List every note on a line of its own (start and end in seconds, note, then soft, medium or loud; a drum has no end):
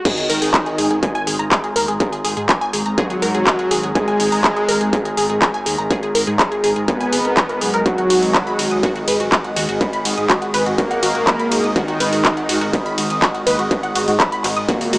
0.05 14.98 G#2 medium
0.05 14.98 D#3 medium
0.05 1.42 D#3 loud
0.05 14.98 G#3 medium
0.05 1.42 D#4 loud
0.05 0.11 G#4 loud
0.05 14.98 G#4 medium
0.05 7.82 A#5 medium
0.05 kick loud
0.05 closed hi-hat medium
0.05 crash loud
0.05 sub drop medium
0.17 0.27 G#4 medium
0.17 closed hi-hat soft
0.30 0.39 G#1 medium
0.30 0.39 A#4 loud
0.30 open hi-hat loud
0.42 0.51 G#1 medium
0.42 0.53 G#4 medium
0.42 open hi-hat medium
0.54 0.60 G#4 medium
0.54 kick loud
0.54 clap loud
0.54 closed hi-hat medium
0.66 0.75 G#4 medium
0.66 closed hi-hat soft
0.78 0.88 G#1 loud
0.78 0.88 G#4 loud
0.78 open hi-hat loud
0.91 1.00 G#1 medium
0.91 1.00 G#4 medium
0.91 closed hi-hat soft
1.03 1.12 G#5 medium
1.03 kick loud
1.03 closed hi-hat medium
1.15 1.26 G#5 loud
1.15 closed hi-hat soft
1.27 1.36 G#1 loud
1.27 1.36 G#4 medium
1.27 open hi-hat loud
1.39 1.48 G#1 medium
1.39 1.45 A#5 medium
1.39 closed hi-hat soft
1.51 1.57 G#4 loud
1.51 kick loud
1.51 clap loud
1.51 closed hi-hat medium
1.64 1.73 G#4 medium
1.64 closed hi-hat soft
1.76 1.85 D#2 loud
1.76 1.85 A#4 loud
1.76 open hi-hat loud
1.88 1.97 G#1 medium
1.88 1.99 G#4 medium
1.88 closed hi-hat soft
2.00 2.06 G#4 medium
2.00 kick loud
2.00 closed hi-hat medium
2.12 2.22 G#4 medium
2.12 closed hi-hat soft
2.24 2.34 G#1 loud
2.24 2.34 G#4 loud
2.24 open hi-hat loud
2.37 2.46 G#2 medium
2.37 2.46 G#4 medium
2.37 closed hi-hat soft
2.49 2.58 G#5 medium
2.49 kick loud
2.49 clap loud
2.49 closed hi-hat medium
2.61 2.73 G#5 loud
2.61 closed hi-hat soft
2.73 2.83 G#1 medium
2.73 2.83 G#4 medium
2.73 open hi-hat loud
2.86 2.95 G#1 medium
2.86 2.91 A#5 medium
2.86 closed hi-hat soft
2.98 3.86 F#3 loud
2.98 3.86 F#4 loud
2.98 3.03 G#4 loud
2.98 kick loud
2.98 closed hi-hat medium
3.10 3.19 G#4 medium
3.10 closed hi-hat soft
3.22 3.31 G#1 medium
3.22 3.31 A#4 medium
3.22 open hi-hat loud
3.35 3.44 G#1 medium
3.35 3.45 G#4 medium
3.35 closed hi-hat soft
3.47 3.52 G#4 medium
3.47 kick loud
3.47 clap loud
3.47 closed hi-hat medium
3.59 3.68 G#4 medium
3.59 closed hi-hat soft
3.71 3.80 G#1 medium
3.71 3.80 G#4 loud
3.71 open hi-hat loud
3.83 3.92 G#1 medium
3.83 3.92 G#4 medium
3.83 closed hi-hat soft
3.95 5.32 G#3 loud
3.95 5.32 G#4 loud
3.95 4.05 G#5 medium
3.95 kick loud
3.95 closed hi-hat medium
4.08 4.19 G#5 loud
4.08 closed hi-hat soft
4.20 4.29 G#1 medium
4.20 4.29 G#4 medium
4.20 open hi-hat loud
4.32 4.41 G#1 medium
4.32 4.38 A#5 medium
4.32 open hi-hat medium
4.44 4.50 G#4 loud
4.44 kick loud
4.44 clap loud
4.44 closed hi-hat medium
4.57 4.66 G#4 medium
4.57 closed hi-hat soft
4.68 4.78 G#1 loud
4.68 4.78 A#4 loud
4.68 open hi-hat loud
4.81 4.90 G#1 medium
4.81 4.92 G#4 medium
4.81 closed hi-hat soft
4.93 4.99 G#4 medium
4.93 kick loud
4.93 closed hi-hat medium
5.05 5.14 G#4 medium
5.05 closed hi-hat soft
5.17 5.27 G#1 medium
5.17 5.27 G#4 loud
5.17 open hi-hat loud
5.30 5.39 G#1 medium
5.30 5.39 G#4 medium
5.30 closed hi-hat soft
5.42 5.51 G#5 medium
5.42 kick loud
5.42 clap loud
5.42 closed hi-hat medium
5.54 5.66 G#5 loud
5.54 closed hi-hat soft
5.66 5.75 D#2 medium
5.66 5.75 G#4 medium
5.66 open hi-hat loud
5.78 5.87 G#1 medium
5.78 5.84 A#5 medium
5.90 5.96 G#4 loud
5.90 kick loud
5.90 closed hi-hat medium
6.03 6.12 G#4 medium
6.03 closed hi-hat soft
6.15 6.24 G#1 loud
6.15 6.24 A#4 loud
6.15 open hi-hat loud
6.27 6.36 G#2 medium
6.27 6.38 G#4 medium
6.27 closed hi-hat soft
6.39 6.45 G#4 medium
6.39 kick loud
6.39 clap loud
6.39 closed hi-hat medium
6.52 6.61 G#4 medium
6.52 closed hi-hat soft
6.64 6.73 G#1 loud
6.64 6.73 G#4 loud
6.64 open hi-hat loud
6.76 6.85 G#1 medium
6.76 6.85 G#4 medium
6.76 closed hi-hat soft
6.88 7.76 B3 loud
6.88 7.76 B4 loud
6.88 6.97 G#5 medium
6.88 kick loud
6.88 closed hi-hat medium
7.00 7.12 G#5 loud
7.00 closed hi-hat soft
7.13 7.22 G#1 loud
7.13 7.18 G#4 medium
7.13 open hi-hat loud
7.25 7.34 G#1 medium
7.25 7.34 A#4 medium
7.25 closed hi-hat soft
7.37 7.46 A#5 medium
7.37 kick loud
7.37 clap loud
7.37 closed hi-hat medium
7.49 7.58 A#4 medium
7.49 closed hi-hat soft
7.61 7.70 F#1 medium
7.61 7.71 G#4 medium
7.61 open hi-hat loud
7.74 7.83 F#1 medium
7.74 7.83 A#4 loud
7.74 closed hi-hat soft
7.86 9.22 F#3 loud
7.86 9.22 F#4 loud
7.86 7.91 F#4 medium
7.86 14.98 D#5 medium
7.86 kick loud
7.86 closed hi-hat medium
7.98 8.07 F#5 medium
7.98 closed hi-hat soft
8.10 8.19 G#1 medium
8.10 8.19 F#4 loud
8.10 open hi-hat loud
8.10 ride medium
8.22 8.31 G#1 medium
8.22 8.32 F#4 medium
8.22 open hi-hat medium
8.34 8.44 B5 medium
8.34 kick loud
8.34 clap loud
8.34 closed hi-hat medium
8.47 8.58 B5 loud
8.47 closed hi-hat soft
8.59 8.68 G#1 medium
8.59 8.68 F#4 medium
8.59 open hi-hat loud
8.59 ride medium
8.71 8.80 G#1 medium
8.71 8.77 D#6 medium
8.71 closed hi-hat soft
8.83 8.89 F#4 loud
8.83 kick loud
8.83 closed hi-hat medium
8.96 9.05 F#4 medium
8.96 closed hi-hat soft
9.08 9.17 G#1 medium
9.08 9.17 B4 loud
9.08 open hi-hat loud
9.08 ride medium
9.20 9.29 G#1 medium
9.20 9.31 F#4 medium
9.20 closed hi-hat soft
9.32 9.38 F#4 medium
9.32 kick loud
9.32 clap loud
9.32 closed hi-hat medium
9.44 9.53 F#5 medium
9.44 closed hi-hat soft
9.56 9.66 D#2 medium
9.56 9.66 F#4 loud
9.56 open hi-hat loud
9.56 ride medium
9.69 9.78 G#1 medium
9.69 9.78 F#4 medium
9.69 closed hi-hat soft
9.81 9.90 B5 medium
9.81 kick loud
9.81 closed hi-hat medium
9.93 10.05 B5 loud
9.93 closed hi-hat soft
10.05 10.14 G#1 loud
10.05 10.14 F#4 medium
10.05 open hi-hat loud
10.05 ride medium
10.17 10.26 G#2 medium
10.17 10.23 D#6 medium
10.17 closed hi-hat soft
10.30 10.35 F#4 loud
10.30 kick loud
10.30 clap loud
10.30 closed hi-hat medium
10.42 10.51 F#4 medium
10.42 closed hi-hat soft
10.54 10.63 G#1 medium
10.54 10.63 B4 medium
10.54 open hi-hat loud
10.54 ride medium
10.66 10.75 G#1 medium
10.66 10.77 F#4 medium
10.66 closed hi-hat soft
10.78 11.66 A#3 loud
10.78 10.84 F#4 medium
10.78 11.66 A#4 loud
10.78 kick loud
10.78 closed hi-hat medium
10.91 11.00 F#5 medium
10.91 closed hi-hat soft
11.03 11.12 G#1 loud
11.03 11.12 F#4 loud
11.03 open hi-hat loud
11.03 ride medium
11.15 11.24 G#1 medium
11.15 11.24 F#4 medium
11.27 11.36 B5 medium
11.27 kick loud
11.27 clap loud
11.27 closed hi-hat medium
11.39 11.51 B5 loud
11.39 closed hi-hat soft
11.51 11.61 G#1 medium
11.51 11.61 F#4 medium
11.51 open hi-hat loud
11.51 ride medium
11.64 11.73 G#1 medium
11.64 11.69 D#6 medium
11.64 closed hi-hat soft
11.76 13.13 D#3 loud
11.76 13.13 D#4 loud
11.76 11.81 F#4 loud
11.76 kick loud
11.76 closed hi-hat medium
11.88 11.97 F#4 medium
11.88 closed hi-hat soft
12.00 12.09 G#1 loud
12.00 12.10 B4 medium
12.00 open hi-hat loud
12.00 ride medium
12.13 12.22 G#1 medium
12.13 12.23 F#4 medium
12.13 open hi-hat medium
12.25 12.30 F#4 medium
12.25 kick loud
12.25 clap loud
12.25 closed hi-hat medium
12.37 12.46 F#5 medium
12.37 closed hi-hat soft
12.49 12.58 G#1 loud
12.49 12.58 F#4 medium
12.49 open hi-hat loud
12.49 ride medium
12.61 12.70 G#1 medium
12.61 12.70 F#4 medium
12.61 closed hi-hat soft
12.73 12.83 B5 medium
12.73 kick loud
12.73 closed hi-hat medium
12.86 12.97 B5 loud
12.86 closed hi-hat soft
12.98 13.07 G#1 loud
12.98 13.07 F#4 medium
12.98 open hi-hat loud
12.98 ride medium
13.10 13.19 G#1 medium
13.10 13.16 D#6 medium
13.10 closed hi-hat soft
13.22 13.28 F#4 loud
13.22 kick loud
13.22 clap loud
13.22 closed hi-hat medium
13.34 13.44 F#4 medium
13.34 closed hi-hat soft
13.47 13.56 D#2 medium
13.47 13.56 B4 loud
13.47 open hi-hat medium
13.47 ride medium
13.59 13.68 G#1 medium
13.59 13.70 F#4 medium
13.59 closed hi-hat soft
13.71 13.77 F#4 medium
13.71 kick loud
13.71 closed hi-hat medium
13.83 13.92 F#5 medium
13.83 closed hi-hat soft
13.95 14.05 G#1 medium
13.95 14.05 F#4 medium
13.95 open hi-hat loud
13.95 ride medium
14.08 14.17 G#2 medium
14.08 14.17 F#4 medium
14.08 open hi-hat medium
14.20 14.29 B5 medium
14.20 kick loud
14.20 clap loud
14.20 closed hi-hat medium
14.32 14.44 B5 loud
14.32 closed hi-hat soft
14.44 14.53 G#1 loud
14.44 14.53 F#4 medium
14.44 clap soft
14.44 open hi-hat loud
14.44 ride medium
14.56 14.65 G#1 medium
14.56 14.62 D#6 medium
14.56 closed hi-hat soft
14.68 14.98 A#2 loud
14.68 14.98 A#3 loud
14.68 14.74 F#4 loud
14.68 kick loud
14.68 closed hi-hat medium
14.81 14.90 F#4 medium
14.81 open hi-hat medium
14.93 14.98 G#1 loud
14.93 14.98 F#4 loud
14.93 open hi-hat loud
14.93 ride medium